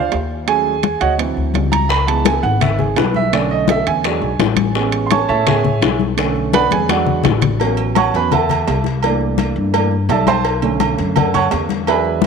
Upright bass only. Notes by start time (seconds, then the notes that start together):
0.14 D#2
1.01 D2
1.37 D2
1.54 C#2
2.43 G#1
2.96 B1
3.87 E2
4.22 B1
4.39 A1
5.29 A2
5.81 B1
6.72 E2
7.25 A1
8.14 E2
8.68 C2
9.56 G2
10.09 B1
10.99 F#2
11.52 E2